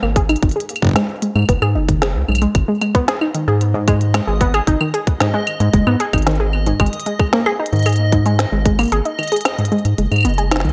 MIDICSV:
0, 0, Header, 1, 5, 480
1, 0, Start_track
1, 0, Key_signature, 5, "minor"
1, 0, Tempo, 530973
1, 384, Time_signature, 4, 2, 24, 8
1, 9697, End_track
2, 0, Start_track
2, 0, Title_t, "Synth texture"
2, 0, Program_c, 0, 99
2, 2304, Note_on_c, 0, 75, 83
2, 9697, Note_off_c, 0, 75, 0
2, 9697, End_track
3, 0, Start_track
3, 0, Title_t, "Synth arpeggio sound"
3, 0, Program_c, 1, 84
3, 25, Note_on_c, 1, 58, 101
3, 122, Note_off_c, 1, 58, 0
3, 144, Note_on_c, 1, 68, 99
3, 203, Note_off_c, 1, 68, 0
3, 265, Note_on_c, 1, 63, 74
3, 362, Note_off_c, 1, 63, 0
3, 385, Note_on_c, 1, 51, 82
3, 482, Note_off_c, 1, 51, 0
3, 505, Note_on_c, 1, 68, 74
3, 563, Note_off_c, 1, 68, 0
3, 745, Note_on_c, 1, 44, 105
3, 859, Note_off_c, 1, 44, 0
3, 865, Note_on_c, 1, 56, 105
3, 923, Note_off_c, 1, 56, 0
3, 1105, Note_on_c, 1, 56, 76
3, 1163, Note_off_c, 1, 56, 0
3, 1225, Note_on_c, 1, 56, 76
3, 1322, Note_off_c, 1, 56, 0
3, 1345, Note_on_c, 1, 59, 94
3, 1442, Note_off_c, 1, 59, 0
3, 1465, Note_on_c, 1, 68, 101
3, 1523, Note_off_c, 1, 68, 0
3, 1584, Note_on_c, 1, 63, 74
3, 1682, Note_off_c, 1, 63, 0
3, 1705, Note_on_c, 1, 51, 74
3, 1802, Note_off_c, 1, 51, 0
3, 1825, Note_on_c, 1, 68, 83
3, 1883, Note_off_c, 1, 68, 0
3, 2064, Note_on_c, 1, 44, 97
3, 2179, Note_off_c, 1, 44, 0
3, 2185, Note_on_c, 1, 56, 98
3, 2243, Note_off_c, 1, 56, 0
3, 2425, Note_on_c, 1, 56, 74
3, 2483, Note_off_c, 1, 56, 0
3, 2545, Note_on_c, 1, 56, 74
3, 2642, Note_off_c, 1, 56, 0
3, 2665, Note_on_c, 1, 59, 103
3, 2762, Note_off_c, 1, 59, 0
3, 2785, Note_on_c, 1, 68, 99
3, 2843, Note_off_c, 1, 68, 0
3, 2905, Note_on_c, 1, 63, 78
3, 3002, Note_off_c, 1, 63, 0
3, 3025, Note_on_c, 1, 51, 77
3, 3122, Note_off_c, 1, 51, 0
3, 3144, Note_on_c, 1, 68, 76
3, 3203, Note_off_c, 1, 68, 0
3, 3385, Note_on_c, 1, 44, 101
3, 3499, Note_off_c, 1, 44, 0
3, 3505, Note_on_c, 1, 56, 100
3, 3563, Note_off_c, 1, 56, 0
3, 3744, Note_on_c, 1, 56, 80
3, 3803, Note_off_c, 1, 56, 0
3, 3865, Note_on_c, 1, 56, 76
3, 3962, Note_off_c, 1, 56, 0
3, 3985, Note_on_c, 1, 59, 99
3, 4082, Note_off_c, 1, 59, 0
3, 4105, Note_on_c, 1, 68, 97
3, 4163, Note_off_c, 1, 68, 0
3, 4225, Note_on_c, 1, 63, 82
3, 4322, Note_off_c, 1, 63, 0
3, 4345, Note_on_c, 1, 51, 73
3, 4442, Note_off_c, 1, 51, 0
3, 4465, Note_on_c, 1, 68, 73
3, 4523, Note_off_c, 1, 68, 0
3, 4705, Note_on_c, 1, 44, 106
3, 4819, Note_off_c, 1, 44, 0
3, 4825, Note_on_c, 1, 56, 103
3, 4883, Note_off_c, 1, 56, 0
3, 5065, Note_on_c, 1, 56, 78
3, 5123, Note_off_c, 1, 56, 0
3, 5185, Note_on_c, 1, 56, 81
3, 5282, Note_off_c, 1, 56, 0
3, 5305, Note_on_c, 1, 59, 104
3, 5402, Note_off_c, 1, 59, 0
3, 5425, Note_on_c, 1, 68, 104
3, 5483, Note_off_c, 1, 68, 0
3, 5545, Note_on_c, 1, 63, 76
3, 5642, Note_off_c, 1, 63, 0
3, 5665, Note_on_c, 1, 51, 83
3, 5762, Note_off_c, 1, 51, 0
3, 5785, Note_on_c, 1, 68, 77
3, 5843, Note_off_c, 1, 68, 0
3, 6025, Note_on_c, 1, 44, 101
3, 6139, Note_off_c, 1, 44, 0
3, 6145, Note_on_c, 1, 56, 99
3, 6203, Note_off_c, 1, 56, 0
3, 6385, Note_on_c, 1, 56, 74
3, 6443, Note_off_c, 1, 56, 0
3, 6505, Note_on_c, 1, 56, 79
3, 6602, Note_off_c, 1, 56, 0
3, 6624, Note_on_c, 1, 58, 103
3, 6722, Note_off_c, 1, 58, 0
3, 6744, Note_on_c, 1, 68, 102
3, 6803, Note_off_c, 1, 68, 0
3, 6864, Note_on_c, 1, 63, 78
3, 6962, Note_off_c, 1, 63, 0
3, 6984, Note_on_c, 1, 51, 74
3, 7082, Note_off_c, 1, 51, 0
3, 7104, Note_on_c, 1, 68, 82
3, 7163, Note_off_c, 1, 68, 0
3, 7344, Note_on_c, 1, 44, 100
3, 7458, Note_off_c, 1, 44, 0
3, 7464, Note_on_c, 1, 56, 100
3, 7523, Note_off_c, 1, 56, 0
3, 7704, Note_on_c, 1, 56, 78
3, 7763, Note_off_c, 1, 56, 0
3, 7824, Note_on_c, 1, 56, 78
3, 7922, Note_off_c, 1, 56, 0
3, 7944, Note_on_c, 1, 58, 97
3, 8042, Note_off_c, 1, 58, 0
3, 8064, Note_on_c, 1, 68, 98
3, 8123, Note_off_c, 1, 68, 0
3, 8184, Note_on_c, 1, 63, 76
3, 8282, Note_off_c, 1, 63, 0
3, 8304, Note_on_c, 1, 51, 72
3, 8402, Note_off_c, 1, 51, 0
3, 8425, Note_on_c, 1, 68, 80
3, 8483, Note_off_c, 1, 68, 0
3, 8664, Note_on_c, 1, 44, 102
3, 8778, Note_off_c, 1, 44, 0
3, 8784, Note_on_c, 1, 56, 102
3, 8843, Note_off_c, 1, 56, 0
3, 9024, Note_on_c, 1, 56, 80
3, 9083, Note_off_c, 1, 56, 0
3, 9144, Note_on_c, 1, 56, 76
3, 9242, Note_off_c, 1, 56, 0
3, 9264, Note_on_c, 1, 59, 100
3, 9362, Note_off_c, 1, 59, 0
3, 9384, Note_on_c, 1, 68, 97
3, 9443, Note_off_c, 1, 68, 0
3, 9504, Note_on_c, 1, 63, 81
3, 9602, Note_off_c, 1, 63, 0
3, 9624, Note_on_c, 1, 51, 77
3, 9697, Note_off_c, 1, 51, 0
3, 9697, End_track
4, 0, Start_track
4, 0, Title_t, "Analog synth bass"
4, 0, Program_c, 2, 38
4, 24, Note_on_c, 2, 32, 84
4, 325, Note_off_c, 2, 32, 0
4, 385, Note_on_c, 2, 32, 96
4, 467, Note_off_c, 2, 32, 0
4, 1224, Note_on_c, 2, 44, 88
4, 1307, Note_off_c, 2, 44, 0
4, 1345, Note_on_c, 2, 30, 98
4, 1427, Note_off_c, 2, 30, 0
4, 1464, Note_on_c, 2, 44, 95
4, 1585, Note_on_c, 2, 30, 89
4, 1598, Note_off_c, 2, 44, 0
4, 1944, Note_on_c, 2, 37, 91
4, 1958, Note_off_c, 2, 30, 0
4, 2027, Note_off_c, 2, 37, 0
4, 2064, Note_on_c, 2, 35, 90
4, 2230, Note_off_c, 2, 35, 0
4, 2304, Note_on_c, 2, 32, 99
4, 2387, Note_off_c, 2, 32, 0
4, 3145, Note_on_c, 2, 44, 86
4, 3805, Note_off_c, 2, 44, 0
4, 3864, Note_on_c, 2, 32, 84
4, 4165, Note_off_c, 2, 32, 0
4, 4224, Note_on_c, 2, 32, 98
4, 4307, Note_off_c, 2, 32, 0
4, 5065, Note_on_c, 2, 44, 89
4, 5147, Note_off_c, 2, 44, 0
4, 5185, Note_on_c, 2, 30, 97
4, 5267, Note_off_c, 2, 30, 0
4, 5304, Note_on_c, 2, 44, 91
4, 5387, Note_off_c, 2, 44, 0
4, 5545, Note_on_c, 2, 32, 94
4, 6085, Note_off_c, 2, 32, 0
4, 6144, Note_on_c, 2, 32, 97
4, 6227, Note_off_c, 2, 32, 0
4, 6984, Note_on_c, 2, 44, 88
4, 7645, Note_off_c, 2, 44, 0
4, 7704, Note_on_c, 2, 32, 85
4, 8005, Note_off_c, 2, 32, 0
4, 8065, Note_on_c, 2, 32, 99
4, 8147, Note_off_c, 2, 32, 0
4, 8904, Note_on_c, 2, 44, 88
4, 8987, Note_off_c, 2, 44, 0
4, 9024, Note_on_c, 2, 30, 98
4, 9107, Note_off_c, 2, 30, 0
4, 9144, Note_on_c, 2, 44, 95
4, 9264, Note_on_c, 2, 30, 91
4, 9278, Note_off_c, 2, 44, 0
4, 9624, Note_on_c, 2, 37, 91
4, 9638, Note_off_c, 2, 30, 0
4, 9697, Note_off_c, 2, 37, 0
4, 9697, End_track
5, 0, Start_track
5, 0, Title_t, "Drums"
5, 25, Note_on_c, 9, 75, 49
5, 115, Note_off_c, 9, 75, 0
5, 145, Note_on_c, 9, 36, 121
5, 145, Note_on_c, 9, 42, 78
5, 235, Note_off_c, 9, 36, 0
5, 235, Note_off_c, 9, 42, 0
5, 265, Note_on_c, 9, 42, 49
5, 265, Note_on_c, 9, 75, 73
5, 324, Note_off_c, 9, 42, 0
5, 324, Note_on_c, 9, 42, 41
5, 355, Note_off_c, 9, 75, 0
5, 385, Note_off_c, 9, 42, 0
5, 385, Note_on_c, 9, 36, 123
5, 385, Note_on_c, 9, 42, 34
5, 445, Note_off_c, 9, 42, 0
5, 445, Note_on_c, 9, 42, 28
5, 464, Note_off_c, 9, 42, 0
5, 464, Note_on_c, 9, 42, 46
5, 475, Note_off_c, 9, 36, 0
5, 545, Note_off_c, 9, 42, 0
5, 545, Note_on_c, 9, 42, 60
5, 625, Note_off_c, 9, 42, 0
5, 625, Note_on_c, 9, 42, 75
5, 685, Note_off_c, 9, 42, 0
5, 685, Note_on_c, 9, 42, 48
5, 685, Note_on_c, 9, 75, 48
5, 745, Note_on_c, 9, 36, 112
5, 765, Note_off_c, 9, 36, 0
5, 765, Note_on_c, 9, 36, 91
5, 775, Note_off_c, 9, 42, 0
5, 775, Note_off_c, 9, 75, 0
5, 785, Note_off_c, 9, 36, 0
5, 785, Note_on_c, 9, 36, 75
5, 805, Note_off_c, 9, 36, 0
5, 805, Note_on_c, 9, 36, 64
5, 825, Note_off_c, 9, 36, 0
5, 825, Note_on_c, 9, 36, 51
5, 845, Note_off_c, 9, 36, 0
5, 845, Note_on_c, 9, 36, 43
5, 865, Note_on_c, 9, 38, 119
5, 865, Note_on_c, 9, 42, 74
5, 865, Note_on_c, 9, 75, 70
5, 935, Note_off_c, 9, 36, 0
5, 955, Note_off_c, 9, 38, 0
5, 955, Note_off_c, 9, 42, 0
5, 955, Note_off_c, 9, 75, 0
5, 1105, Note_on_c, 9, 42, 75
5, 1195, Note_off_c, 9, 42, 0
5, 1225, Note_on_c, 9, 75, 45
5, 1255, Note_off_c, 9, 75, 0
5, 1255, Note_on_c, 9, 75, 38
5, 1285, Note_off_c, 9, 75, 0
5, 1285, Note_on_c, 9, 75, 31
5, 1315, Note_off_c, 9, 75, 0
5, 1315, Note_on_c, 9, 75, 25
5, 1345, Note_on_c, 9, 36, 118
5, 1345, Note_on_c, 9, 42, 78
5, 1405, Note_off_c, 9, 75, 0
5, 1405, Note_on_c, 9, 75, 14
5, 1435, Note_off_c, 9, 36, 0
5, 1435, Note_off_c, 9, 42, 0
5, 1435, Note_off_c, 9, 75, 0
5, 1435, Note_on_c, 9, 75, 11
5, 1465, Note_off_c, 9, 75, 0
5, 1465, Note_on_c, 9, 75, 72
5, 1555, Note_off_c, 9, 75, 0
5, 1704, Note_on_c, 9, 36, 84
5, 1705, Note_on_c, 9, 42, 73
5, 1795, Note_off_c, 9, 36, 0
5, 1795, Note_off_c, 9, 42, 0
5, 1825, Note_on_c, 9, 38, 121
5, 1825, Note_on_c, 9, 42, 78
5, 1825, Note_on_c, 9, 75, 50
5, 1915, Note_off_c, 9, 38, 0
5, 1915, Note_off_c, 9, 42, 0
5, 1915, Note_off_c, 9, 75, 0
5, 2065, Note_on_c, 9, 75, 33
5, 2095, Note_off_c, 9, 75, 0
5, 2095, Note_on_c, 9, 75, 42
5, 2125, Note_off_c, 9, 75, 0
5, 2125, Note_on_c, 9, 42, 74
5, 2125, Note_on_c, 9, 75, 51
5, 2155, Note_off_c, 9, 75, 0
5, 2155, Note_on_c, 9, 75, 59
5, 2184, Note_off_c, 9, 42, 0
5, 2184, Note_on_c, 9, 42, 51
5, 2245, Note_off_c, 9, 75, 0
5, 2275, Note_off_c, 9, 42, 0
5, 2304, Note_on_c, 9, 36, 112
5, 2304, Note_on_c, 9, 42, 74
5, 2304, Note_on_c, 9, 75, 49
5, 2395, Note_off_c, 9, 36, 0
5, 2395, Note_off_c, 9, 42, 0
5, 2395, Note_off_c, 9, 75, 0
5, 2544, Note_on_c, 9, 42, 72
5, 2544, Note_on_c, 9, 75, 73
5, 2635, Note_off_c, 9, 42, 0
5, 2635, Note_off_c, 9, 75, 0
5, 2665, Note_on_c, 9, 36, 117
5, 2665, Note_on_c, 9, 42, 51
5, 2755, Note_off_c, 9, 36, 0
5, 2755, Note_off_c, 9, 42, 0
5, 2785, Note_on_c, 9, 38, 114
5, 2785, Note_on_c, 9, 42, 71
5, 2875, Note_off_c, 9, 38, 0
5, 2875, Note_off_c, 9, 42, 0
5, 2905, Note_on_c, 9, 75, 52
5, 2995, Note_off_c, 9, 75, 0
5, 3025, Note_on_c, 9, 42, 74
5, 3115, Note_off_c, 9, 42, 0
5, 3264, Note_on_c, 9, 42, 73
5, 3355, Note_off_c, 9, 42, 0
5, 3505, Note_on_c, 9, 36, 115
5, 3505, Note_on_c, 9, 42, 76
5, 3505, Note_on_c, 9, 75, 49
5, 3595, Note_off_c, 9, 36, 0
5, 3595, Note_off_c, 9, 42, 0
5, 3595, Note_off_c, 9, 75, 0
5, 3625, Note_on_c, 9, 42, 50
5, 3715, Note_off_c, 9, 42, 0
5, 3745, Note_on_c, 9, 38, 115
5, 3745, Note_on_c, 9, 42, 73
5, 3745, Note_on_c, 9, 75, 73
5, 3835, Note_off_c, 9, 38, 0
5, 3835, Note_off_c, 9, 42, 0
5, 3835, Note_off_c, 9, 75, 0
5, 3985, Note_on_c, 9, 36, 111
5, 3985, Note_on_c, 9, 42, 73
5, 4075, Note_off_c, 9, 36, 0
5, 4075, Note_off_c, 9, 42, 0
5, 4105, Note_on_c, 9, 42, 49
5, 4105, Note_on_c, 9, 75, 50
5, 4195, Note_off_c, 9, 42, 0
5, 4195, Note_off_c, 9, 75, 0
5, 4224, Note_on_c, 9, 36, 110
5, 4225, Note_on_c, 9, 42, 76
5, 4315, Note_off_c, 9, 36, 0
5, 4315, Note_off_c, 9, 42, 0
5, 4345, Note_on_c, 9, 75, 78
5, 4435, Note_off_c, 9, 75, 0
5, 4465, Note_on_c, 9, 42, 71
5, 4555, Note_off_c, 9, 42, 0
5, 4584, Note_on_c, 9, 36, 114
5, 4585, Note_on_c, 9, 42, 48
5, 4675, Note_off_c, 9, 36, 0
5, 4675, Note_off_c, 9, 42, 0
5, 4705, Note_on_c, 9, 38, 108
5, 4705, Note_on_c, 9, 42, 73
5, 4705, Note_on_c, 9, 75, 50
5, 4795, Note_off_c, 9, 38, 0
5, 4795, Note_off_c, 9, 42, 0
5, 4795, Note_off_c, 9, 75, 0
5, 4945, Note_on_c, 9, 42, 75
5, 4945, Note_on_c, 9, 75, 78
5, 5035, Note_off_c, 9, 42, 0
5, 5035, Note_off_c, 9, 75, 0
5, 5065, Note_on_c, 9, 42, 49
5, 5155, Note_off_c, 9, 42, 0
5, 5185, Note_on_c, 9, 36, 109
5, 5185, Note_on_c, 9, 42, 75
5, 5275, Note_off_c, 9, 36, 0
5, 5275, Note_off_c, 9, 42, 0
5, 5305, Note_on_c, 9, 75, 51
5, 5395, Note_off_c, 9, 75, 0
5, 5424, Note_on_c, 9, 42, 75
5, 5515, Note_off_c, 9, 42, 0
5, 5544, Note_on_c, 9, 42, 46
5, 5544, Note_on_c, 9, 75, 78
5, 5545, Note_on_c, 9, 36, 80
5, 5584, Note_off_c, 9, 42, 0
5, 5584, Note_on_c, 9, 42, 38
5, 5625, Note_off_c, 9, 42, 0
5, 5625, Note_on_c, 9, 42, 31
5, 5635, Note_off_c, 9, 36, 0
5, 5635, Note_off_c, 9, 75, 0
5, 5665, Note_off_c, 9, 42, 0
5, 5665, Note_on_c, 9, 38, 112
5, 5665, Note_on_c, 9, 42, 73
5, 5745, Note_off_c, 9, 42, 0
5, 5745, Note_on_c, 9, 42, 18
5, 5755, Note_off_c, 9, 38, 0
5, 5835, Note_off_c, 9, 42, 0
5, 5905, Note_on_c, 9, 75, 52
5, 5995, Note_off_c, 9, 75, 0
5, 6025, Note_on_c, 9, 42, 48
5, 6115, Note_off_c, 9, 42, 0
5, 6144, Note_on_c, 9, 36, 113
5, 6145, Note_on_c, 9, 42, 35
5, 6145, Note_on_c, 9, 75, 79
5, 6205, Note_off_c, 9, 42, 0
5, 6205, Note_on_c, 9, 42, 44
5, 6235, Note_off_c, 9, 36, 0
5, 6235, Note_off_c, 9, 75, 0
5, 6265, Note_off_c, 9, 42, 0
5, 6265, Note_on_c, 9, 42, 55
5, 6324, Note_off_c, 9, 42, 0
5, 6324, Note_on_c, 9, 42, 62
5, 6385, Note_off_c, 9, 42, 0
5, 6385, Note_on_c, 9, 42, 74
5, 6475, Note_off_c, 9, 42, 0
5, 6504, Note_on_c, 9, 36, 111
5, 6505, Note_on_c, 9, 75, 53
5, 6595, Note_off_c, 9, 36, 0
5, 6595, Note_off_c, 9, 75, 0
5, 6624, Note_on_c, 9, 38, 108
5, 6715, Note_off_c, 9, 38, 0
5, 6745, Note_on_c, 9, 75, 82
5, 6835, Note_off_c, 9, 75, 0
5, 6925, Note_on_c, 9, 42, 78
5, 6984, Note_off_c, 9, 42, 0
5, 6984, Note_on_c, 9, 42, 23
5, 7014, Note_off_c, 9, 42, 0
5, 7014, Note_on_c, 9, 42, 26
5, 7045, Note_off_c, 9, 42, 0
5, 7045, Note_on_c, 9, 42, 29
5, 7075, Note_off_c, 9, 42, 0
5, 7075, Note_on_c, 9, 42, 32
5, 7104, Note_off_c, 9, 42, 0
5, 7104, Note_on_c, 9, 42, 76
5, 7104, Note_on_c, 9, 75, 54
5, 7134, Note_off_c, 9, 42, 0
5, 7134, Note_on_c, 9, 42, 38
5, 7164, Note_off_c, 9, 42, 0
5, 7164, Note_on_c, 9, 42, 42
5, 7194, Note_off_c, 9, 42, 0
5, 7194, Note_on_c, 9, 42, 45
5, 7195, Note_off_c, 9, 75, 0
5, 7285, Note_off_c, 9, 42, 0
5, 7344, Note_on_c, 9, 36, 108
5, 7344, Note_on_c, 9, 42, 76
5, 7435, Note_off_c, 9, 36, 0
5, 7435, Note_off_c, 9, 42, 0
5, 7464, Note_on_c, 9, 42, 50
5, 7555, Note_off_c, 9, 42, 0
5, 7584, Note_on_c, 9, 38, 111
5, 7584, Note_on_c, 9, 42, 77
5, 7675, Note_off_c, 9, 38, 0
5, 7675, Note_off_c, 9, 42, 0
5, 7824, Note_on_c, 9, 36, 109
5, 7824, Note_on_c, 9, 42, 75
5, 7915, Note_off_c, 9, 36, 0
5, 7915, Note_off_c, 9, 42, 0
5, 7945, Note_on_c, 9, 42, 48
5, 7945, Note_on_c, 9, 75, 78
5, 7965, Note_off_c, 9, 42, 0
5, 7965, Note_on_c, 9, 42, 38
5, 7985, Note_off_c, 9, 42, 0
5, 7985, Note_on_c, 9, 42, 33
5, 8005, Note_off_c, 9, 42, 0
5, 8005, Note_on_c, 9, 42, 26
5, 8024, Note_off_c, 9, 42, 0
5, 8024, Note_on_c, 9, 42, 22
5, 8035, Note_off_c, 9, 75, 0
5, 8044, Note_off_c, 9, 42, 0
5, 8044, Note_on_c, 9, 42, 17
5, 8064, Note_off_c, 9, 42, 0
5, 8064, Note_on_c, 9, 42, 80
5, 8155, Note_off_c, 9, 42, 0
5, 8185, Note_on_c, 9, 42, 37
5, 8275, Note_off_c, 9, 42, 0
5, 8305, Note_on_c, 9, 42, 35
5, 8305, Note_on_c, 9, 75, 54
5, 8345, Note_off_c, 9, 42, 0
5, 8345, Note_on_c, 9, 42, 42
5, 8385, Note_off_c, 9, 42, 0
5, 8385, Note_on_c, 9, 42, 48
5, 8395, Note_off_c, 9, 75, 0
5, 8425, Note_off_c, 9, 42, 0
5, 8425, Note_on_c, 9, 42, 55
5, 8465, Note_off_c, 9, 42, 0
5, 8465, Note_on_c, 9, 42, 63
5, 8505, Note_off_c, 9, 42, 0
5, 8505, Note_on_c, 9, 42, 69
5, 8545, Note_off_c, 9, 42, 0
5, 8545, Note_on_c, 9, 38, 113
5, 8545, Note_on_c, 9, 42, 78
5, 8545, Note_on_c, 9, 75, 82
5, 8635, Note_off_c, 9, 38, 0
5, 8635, Note_off_c, 9, 42, 0
5, 8635, Note_off_c, 9, 75, 0
5, 8665, Note_on_c, 9, 42, 36
5, 8725, Note_off_c, 9, 42, 0
5, 8725, Note_on_c, 9, 42, 82
5, 8785, Note_off_c, 9, 42, 0
5, 8785, Note_on_c, 9, 42, 23
5, 8845, Note_off_c, 9, 42, 0
5, 8845, Note_on_c, 9, 42, 19
5, 8905, Note_off_c, 9, 42, 0
5, 8905, Note_on_c, 9, 42, 54
5, 8995, Note_off_c, 9, 42, 0
5, 9025, Note_on_c, 9, 42, 80
5, 9115, Note_off_c, 9, 42, 0
5, 9145, Note_on_c, 9, 42, 34
5, 9145, Note_on_c, 9, 75, 37
5, 9165, Note_off_c, 9, 75, 0
5, 9165, Note_on_c, 9, 75, 43
5, 9185, Note_off_c, 9, 42, 0
5, 9185, Note_off_c, 9, 75, 0
5, 9185, Note_on_c, 9, 42, 29
5, 9185, Note_on_c, 9, 75, 51
5, 9205, Note_off_c, 9, 75, 0
5, 9205, Note_on_c, 9, 75, 57
5, 9225, Note_off_c, 9, 42, 0
5, 9225, Note_off_c, 9, 75, 0
5, 9225, Note_on_c, 9, 42, 24
5, 9225, Note_on_c, 9, 75, 66
5, 9245, Note_off_c, 9, 75, 0
5, 9245, Note_on_c, 9, 75, 72
5, 9265, Note_off_c, 9, 42, 0
5, 9265, Note_on_c, 9, 42, 81
5, 9305, Note_off_c, 9, 42, 0
5, 9305, Note_on_c, 9, 42, 16
5, 9335, Note_off_c, 9, 75, 0
5, 9345, Note_off_c, 9, 42, 0
5, 9345, Note_on_c, 9, 42, 13
5, 9385, Note_off_c, 9, 42, 0
5, 9385, Note_on_c, 9, 42, 53
5, 9476, Note_off_c, 9, 42, 0
5, 9505, Note_on_c, 9, 38, 105
5, 9505, Note_on_c, 9, 42, 81
5, 9505, Note_on_c, 9, 75, 56
5, 9545, Note_off_c, 9, 38, 0
5, 9545, Note_on_c, 9, 38, 87
5, 9585, Note_off_c, 9, 38, 0
5, 9585, Note_on_c, 9, 38, 74
5, 9596, Note_off_c, 9, 42, 0
5, 9596, Note_off_c, 9, 75, 0
5, 9625, Note_on_c, 9, 42, 16
5, 9665, Note_off_c, 9, 42, 0
5, 9665, Note_on_c, 9, 42, 20
5, 9675, Note_off_c, 9, 38, 0
5, 9697, Note_off_c, 9, 42, 0
5, 9697, End_track
0, 0, End_of_file